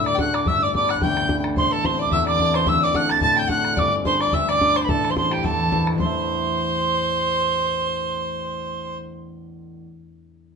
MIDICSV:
0, 0, Header, 1, 5, 480
1, 0, Start_track
1, 0, Tempo, 276753
1, 798, Time_signature, 4, 2, 24, 8
1, 18310, End_track
2, 0, Start_track
2, 0, Title_t, "Tin whistle"
2, 0, Program_c, 0, 75
2, 110, Note_on_c, 0, 86, 99
2, 323, Note_off_c, 0, 86, 0
2, 349, Note_on_c, 0, 90, 109
2, 598, Note_on_c, 0, 86, 98
2, 624, Note_off_c, 0, 90, 0
2, 822, Note_on_c, 0, 88, 105
2, 848, Note_off_c, 0, 86, 0
2, 1083, Note_on_c, 0, 86, 94
2, 1109, Note_off_c, 0, 88, 0
2, 1290, Note_off_c, 0, 86, 0
2, 1303, Note_on_c, 0, 86, 116
2, 1561, Note_on_c, 0, 90, 94
2, 1587, Note_off_c, 0, 86, 0
2, 1778, Note_on_c, 0, 91, 117
2, 1804, Note_off_c, 0, 90, 0
2, 2338, Note_off_c, 0, 91, 0
2, 2728, Note_on_c, 0, 84, 113
2, 2992, Note_on_c, 0, 81, 100
2, 3018, Note_off_c, 0, 84, 0
2, 3213, Note_on_c, 0, 84, 99
2, 3239, Note_off_c, 0, 81, 0
2, 3468, Note_off_c, 0, 84, 0
2, 3486, Note_on_c, 0, 86, 86
2, 3688, Note_on_c, 0, 88, 99
2, 3714, Note_off_c, 0, 86, 0
2, 3933, Note_off_c, 0, 88, 0
2, 3943, Note_on_c, 0, 86, 101
2, 4432, Note_on_c, 0, 84, 109
2, 4458, Note_off_c, 0, 86, 0
2, 4655, Note_on_c, 0, 88, 118
2, 4681, Note_off_c, 0, 84, 0
2, 4911, Note_on_c, 0, 86, 102
2, 4937, Note_off_c, 0, 88, 0
2, 5128, Note_on_c, 0, 90, 114
2, 5154, Note_off_c, 0, 86, 0
2, 5392, Note_on_c, 0, 93, 83
2, 5418, Note_off_c, 0, 90, 0
2, 5585, Note_off_c, 0, 93, 0
2, 5595, Note_on_c, 0, 93, 110
2, 5871, Note_on_c, 0, 91, 116
2, 5897, Note_off_c, 0, 93, 0
2, 6069, Note_off_c, 0, 91, 0
2, 6079, Note_on_c, 0, 90, 120
2, 6566, Note_on_c, 0, 86, 127
2, 6592, Note_off_c, 0, 90, 0
2, 6824, Note_off_c, 0, 86, 0
2, 7039, Note_on_c, 0, 84, 121
2, 7301, Note_on_c, 0, 86, 97
2, 7327, Note_off_c, 0, 84, 0
2, 7512, Note_on_c, 0, 88, 101
2, 7538, Note_off_c, 0, 86, 0
2, 7777, Note_off_c, 0, 88, 0
2, 7790, Note_on_c, 0, 86, 115
2, 8259, Note_on_c, 0, 84, 97
2, 8285, Note_off_c, 0, 86, 0
2, 8364, Note_off_c, 0, 84, 0
2, 8374, Note_on_c, 0, 83, 93
2, 8481, Note_on_c, 0, 81, 120
2, 8507, Note_off_c, 0, 83, 0
2, 8857, Note_on_c, 0, 84, 97
2, 8883, Note_off_c, 0, 81, 0
2, 8951, Note_off_c, 0, 84, 0
2, 8961, Note_on_c, 0, 84, 98
2, 9235, Note_on_c, 0, 79, 79
2, 9261, Note_off_c, 0, 84, 0
2, 9445, Note_on_c, 0, 81, 100
2, 9471, Note_off_c, 0, 79, 0
2, 10184, Note_off_c, 0, 81, 0
2, 10399, Note_on_c, 0, 84, 100
2, 15558, Note_off_c, 0, 84, 0
2, 18310, End_track
3, 0, Start_track
3, 0, Title_t, "Fiddle"
3, 0, Program_c, 1, 110
3, 92, Note_on_c, 1, 74, 98
3, 252, Note_on_c, 1, 79, 70
3, 278, Note_off_c, 1, 74, 0
3, 323, Note_on_c, 1, 78, 85
3, 349, Note_off_c, 1, 79, 0
3, 571, Note_on_c, 1, 74, 76
3, 597, Note_off_c, 1, 78, 0
3, 793, Note_off_c, 1, 74, 0
3, 808, Note_on_c, 1, 76, 81
3, 1047, Note_off_c, 1, 76, 0
3, 1077, Note_on_c, 1, 74, 78
3, 1272, Note_off_c, 1, 74, 0
3, 1297, Note_on_c, 1, 74, 87
3, 1568, Note_on_c, 1, 78, 86
3, 1594, Note_off_c, 1, 74, 0
3, 1746, Note_off_c, 1, 78, 0
3, 1757, Note_on_c, 1, 79, 85
3, 2447, Note_off_c, 1, 79, 0
3, 2708, Note_on_c, 1, 72, 88
3, 2964, Note_on_c, 1, 69, 81
3, 2990, Note_off_c, 1, 72, 0
3, 3192, Note_on_c, 1, 72, 90
3, 3218, Note_off_c, 1, 69, 0
3, 3451, Note_on_c, 1, 74, 100
3, 3477, Note_off_c, 1, 72, 0
3, 3654, Note_off_c, 1, 74, 0
3, 3664, Note_on_c, 1, 76, 91
3, 3903, Note_off_c, 1, 76, 0
3, 3914, Note_on_c, 1, 74, 106
3, 4425, Note_on_c, 1, 72, 87
3, 4451, Note_off_c, 1, 74, 0
3, 4626, Note_on_c, 1, 76, 97
3, 4652, Note_off_c, 1, 72, 0
3, 4878, Note_off_c, 1, 76, 0
3, 4888, Note_on_c, 1, 74, 88
3, 5118, Note_on_c, 1, 78, 97
3, 5144, Note_off_c, 1, 74, 0
3, 5373, Note_on_c, 1, 81, 111
3, 5399, Note_off_c, 1, 78, 0
3, 5566, Note_off_c, 1, 81, 0
3, 5576, Note_on_c, 1, 81, 102
3, 5781, Note_off_c, 1, 81, 0
3, 5781, Note_on_c, 1, 81, 76
3, 5820, Note_on_c, 1, 79, 103
3, 5846, Note_off_c, 1, 81, 0
3, 6023, Note_on_c, 1, 78, 95
3, 6049, Note_off_c, 1, 79, 0
3, 6541, Note_on_c, 1, 74, 100
3, 6567, Note_off_c, 1, 78, 0
3, 6812, Note_off_c, 1, 74, 0
3, 7028, Note_on_c, 1, 72, 98
3, 7277, Note_off_c, 1, 72, 0
3, 7295, Note_on_c, 1, 74, 94
3, 7536, Note_on_c, 1, 76, 95
3, 7562, Note_off_c, 1, 74, 0
3, 7784, Note_on_c, 1, 74, 111
3, 7810, Note_off_c, 1, 76, 0
3, 8256, Note_on_c, 1, 72, 81
3, 8282, Note_off_c, 1, 74, 0
3, 8388, Note_on_c, 1, 71, 80
3, 8414, Note_off_c, 1, 72, 0
3, 8467, Note_on_c, 1, 69, 95
3, 8493, Note_off_c, 1, 71, 0
3, 8843, Note_on_c, 1, 72, 76
3, 8869, Note_off_c, 1, 69, 0
3, 8942, Note_off_c, 1, 72, 0
3, 8952, Note_on_c, 1, 72, 76
3, 9203, Note_on_c, 1, 67, 86
3, 9229, Note_off_c, 1, 72, 0
3, 9418, Note_on_c, 1, 69, 76
3, 9444, Note_off_c, 1, 67, 0
3, 10171, Note_off_c, 1, 69, 0
3, 10364, Note_on_c, 1, 72, 99
3, 15540, Note_off_c, 1, 72, 0
3, 18310, End_track
4, 0, Start_track
4, 0, Title_t, "Harp"
4, 0, Program_c, 2, 46
4, 0, Note_on_c, 2, 38, 67
4, 0, Note_on_c, 2, 45, 94
4, 0, Note_on_c, 2, 57, 53
4, 0, Note_on_c, 2, 60, 44
4, 0, Note_on_c, 2, 62, 46
4, 0, Note_on_c, 2, 64, 64
4, 0, Note_on_c, 2, 66, 65
4, 314, Note_off_c, 2, 57, 0
4, 321, Note_on_c, 2, 57, 52
4, 329, Note_off_c, 2, 62, 0
4, 330, Note_off_c, 2, 66, 0
4, 336, Note_on_c, 2, 62, 47
4, 337, Note_on_c, 2, 66, 59
4, 804, Note_on_c, 2, 31, 53
4, 815, Note_on_c, 2, 43, 56
4, 884, Note_off_c, 2, 38, 0
4, 884, Note_off_c, 2, 45, 0
4, 908, Note_off_c, 2, 66, 0
4, 1276, Note_off_c, 2, 62, 0
4, 1278, Note_on_c, 2, 59, 55
4, 1283, Note_on_c, 2, 62, 50
4, 1296, Note_on_c, 2, 67, 60
4, 1382, Note_off_c, 2, 60, 0
4, 1791, Note_on_c, 2, 38, 91
4, 1845, Note_off_c, 2, 43, 0
4, 2220, Note_off_c, 2, 59, 0
4, 2227, Note_on_c, 2, 59, 48
4, 2242, Note_off_c, 2, 62, 0
4, 2249, Note_on_c, 2, 62, 46
4, 2272, Note_off_c, 2, 67, 0
4, 2279, Note_on_c, 2, 67, 59
4, 2741, Note_on_c, 2, 33, 51
4, 2755, Note_on_c, 2, 45, 54
4, 2804, Note_off_c, 2, 31, 0
4, 2805, Note_off_c, 2, 38, 0
4, 2951, Note_off_c, 2, 64, 0
4, 3209, Note_on_c, 2, 60, 52
4, 3210, Note_on_c, 2, 64, 44
4, 3224, Note_on_c, 2, 69, 55
4, 3313, Note_off_c, 2, 59, 0
4, 3688, Note_on_c, 2, 40, 82
4, 3765, Note_off_c, 2, 45, 0
4, 4159, Note_off_c, 2, 60, 0
4, 4164, Note_off_c, 2, 64, 0
4, 4166, Note_on_c, 2, 60, 56
4, 4171, Note_on_c, 2, 64, 52
4, 4173, Note_off_c, 2, 69, 0
4, 4180, Note_on_c, 2, 69, 60
4, 4629, Note_on_c, 2, 26, 58
4, 4642, Note_on_c, 2, 38, 65
4, 4725, Note_off_c, 2, 33, 0
4, 4725, Note_off_c, 2, 40, 0
4, 5092, Note_off_c, 2, 62, 0
4, 5099, Note_on_c, 2, 62, 46
4, 5103, Note_on_c, 2, 66, 49
4, 5105, Note_off_c, 2, 69, 0
4, 5112, Note_on_c, 2, 69, 61
4, 5207, Note_off_c, 2, 67, 0
4, 5591, Note_on_c, 2, 45, 89
4, 6053, Note_off_c, 2, 62, 0
4, 6060, Note_on_c, 2, 62, 55
4, 6067, Note_off_c, 2, 66, 0
4, 6070, Note_off_c, 2, 69, 0
4, 6074, Note_on_c, 2, 66, 48
4, 6077, Note_on_c, 2, 69, 60
4, 6095, Note_off_c, 2, 57, 0
4, 6548, Note_on_c, 2, 31, 62
4, 6554, Note_on_c, 2, 43, 66
4, 6645, Note_off_c, 2, 26, 0
4, 6645, Note_off_c, 2, 38, 0
4, 6645, Note_off_c, 2, 45, 0
4, 6652, Note_off_c, 2, 66, 0
4, 7024, Note_off_c, 2, 62, 0
4, 7031, Note_on_c, 2, 62, 57
4, 7039, Note_on_c, 2, 67, 44
4, 7050, Note_on_c, 2, 71, 59
4, 7154, Note_off_c, 2, 60, 0
4, 7526, Note_on_c, 2, 38, 80
4, 7605, Note_off_c, 2, 43, 0
4, 7982, Note_off_c, 2, 62, 0
4, 7988, Note_on_c, 2, 62, 55
4, 7992, Note_off_c, 2, 67, 0
4, 7997, Note_off_c, 2, 71, 0
4, 7999, Note_on_c, 2, 67, 47
4, 8004, Note_on_c, 2, 71, 62
4, 8471, Note_on_c, 2, 33, 52
4, 8485, Note_on_c, 2, 45, 75
4, 8565, Note_off_c, 2, 31, 0
4, 8565, Note_off_c, 2, 38, 0
4, 8700, Note_off_c, 2, 64, 0
4, 8942, Note_on_c, 2, 64, 58
4, 8946, Note_off_c, 2, 69, 0
4, 8953, Note_on_c, 2, 69, 48
4, 8964, Note_on_c, 2, 72, 57
4, 9068, Note_off_c, 2, 71, 0
4, 9434, Note_on_c, 2, 40, 80
4, 9525, Note_off_c, 2, 45, 0
4, 9904, Note_off_c, 2, 64, 0
4, 9911, Note_on_c, 2, 64, 52
4, 9921, Note_off_c, 2, 69, 0
4, 9921, Note_off_c, 2, 72, 0
4, 9928, Note_on_c, 2, 69, 43
4, 9928, Note_on_c, 2, 72, 55
4, 10258, Note_off_c, 2, 33, 0
4, 10279, Note_on_c, 2, 33, 48
4, 10303, Note_off_c, 2, 40, 0
4, 10324, Note_on_c, 2, 40, 48
4, 10370, Note_on_c, 2, 57, 49
4, 10412, Note_off_c, 2, 64, 0
4, 10419, Note_on_c, 2, 64, 48
4, 10462, Note_off_c, 2, 72, 0
4, 10469, Note_on_c, 2, 72, 49
4, 10511, Note_on_c, 2, 76, 59
4, 12081, Note_off_c, 2, 67, 0
4, 12843, Note_off_c, 2, 62, 0
4, 13737, Note_off_c, 2, 69, 0
4, 16757, Note_off_c, 2, 57, 0
4, 16781, Note_off_c, 2, 64, 0
4, 16806, Note_off_c, 2, 72, 0
4, 16827, Note_off_c, 2, 76, 0
4, 17043, Note_off_c, 2, 33, 0
4, 17088, Note_off_c, 2, 40, 0
4, 18310, End_track
5, 0, Start_track
5, 0, Title_t, "Bodhran"
5, 109, Note_on_c, 9, 64, 68
5, 283, Note_off_c, 9, 64, 0
5, 323, Note_on_c, 9, 64, 103
5, 496, Note_off_c, 9, 64, 0
5, 592, Note_on_c, 9, 64, 85
5, 765, Note_off_c, 9, 64, 0
5, 801, Note_on_c, 9, 64, 88
5, 975, Note_off_c, 9, 64, 0
5, 1293, Note_on_c, 9, 64, 76
5, 1467, Note_off_c, 9, 64, 0
5, 1545, Note_on_c, 9, 64, 72
5, 1656, Note_off_c, 9, 64, 0
5, 1656, Note_on_c, 9, 64, 28
5, 1761, Note_off_c, 9, 64, 0
5, 1761, Note_on_c, 9, 64, 88
5, 1935, Note_off_c, 9, 64, 0
5, 2028, Note_on_c, 9, 64, 68
5, 2201, Note_off_c, 9, 64, 0
5, 2238, Note_on_c, 9, 64, 93
5, 2412, Note_off_c, 9, 64, 0
5, 2499, Note_on_c, 9, 64, 80
5, 2673, Note_off_c, 9, 64, 0
5, 2717, Note_on_c, 9, 64, 82
5, 2890, Note_off_c, 9, 64, 0
5, 3201, Note_on_c, 9, 64, 81
5, 3374, Note_off_c, 9, 64, 0
5, 3574, Note_on_c, 9, 64, 28
5, 3673, Note_off_c, 9, 64, 0
5, 3673, Note_on_c, 9, 64, 81
5, 3847, Note_off_c, 9, 64, 0
5, 3938, Note_on_c, 9, 64, 65
5, 4111, Note_off_c, 9, 64, 0
5, 4147, Note_on_c, 9, 64, 86
5, 4321, Note_off_c, 9, 64, 0
5, 4408, Note_on_c, 9, 64, 72
5, 4582, Note_off_c, 9, 64, 0
5, 4621, Note_on_c, 9, 64, 86
5, 4795, Note_off_c, 9, 64, 0
5, 5107, Note_on_c, 9, 64, 79
5, 5280, Note_off_c, 9, 64, 0
5, 5366, Note_on_c, 9, 64, 74
5, 5475, Note_off_c, 9, 64, 0
5, 5475, Note_on_c, 9, 64, 26
5, 5573, Note_off_c, 9, 64, 0
5, 5573, Note_on_c, 9, 64, 79
5, 5746, Note_off_c, 9, 64, 0
5, 5840, Note_on_c, 9, 64, 58
5, 6014, Note_off_c, 9, 64, 0
5, 6057, Note_on_c, 9, 64, 77
5, 6230, Note_off_c, 9, 64, 0
5, 6322, Note_on_c, 9, 64, 66
5, 6496, Note_off_c, 9, 64, 0
5, 6542, Note_on_c, 9, 64, 82
5, 6715, Note_off_c, 9, 64, 0
5, 7027, Note_on_c, 9, 64, 80
5, 7201, Note_off_c, 9, 64, 0
5, 7295, Note_on_c, 9, 64, 75
5, 7410, Note_off_c, 9, 64, 0
5, 7410, Note_on_c, 9, 64, 28
5, 7506, Note_off_c, 9, 64, 0
5, 7506, Note_on_c, 9, 64, 79
5, 7679, Note_off_c, 9, 64, 0
5, 7782, Note_on_c, 9, 64, 64
5, 7955, Note_off_c, 9, 64, 0
5, 8000, Note_on_c, 9, 64, 81
5, 8174, Note_off_c, 9, 64, 0
5, 8257, Note_on_c, 9, 64, 68
5, 8431, Note_off_c, 9, 64, 0
5, 8476, Note_on_c, 9, 64, 86
5, 8650, Note_off_c, 9, 64, 0
5, 8752, Note_on_c, 9, 64, 69
5, 8925, Note_off_c, 9, 64, 0
5, 8959, Note_on_c, 9, 64, 81
5, 9132, Note_off_c, 9, 64, 0
5, 9218, Note_on_c, 9, 64, 71
5, 9332, Note_off_c, 9, 64, 0
5, 9332, Note_on_c, 9, 64, 27
5, 9441, Note_off_c, 9, 64, 0
5, 9441, Note_on_c, 9, 64, 77
5, 9614, Note_off_c, 9, 64, 0
5, 9927, Note_on_c, 9, 64, 90
5, 10101, Note_off_c, 9, 64, 0
5, 10185, Note_on_c, 9, 64, 83
5, 10359, Note_off_c, 9, 64, 0
5, 10399, Note_on_c, 9, 64, 84
5, 10572, Note_off_c, 9, 64, 0
5, 18310, End_track
0, 0, End_of_file